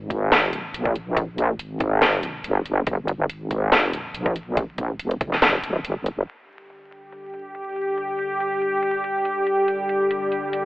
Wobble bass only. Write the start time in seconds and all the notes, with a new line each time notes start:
Already playing: G#1
0.74 A#1
1.59 G#1
2.44 G1
2.87 G1
3.29 G#1
4.14 A#1
5.00 F1
5.85 G1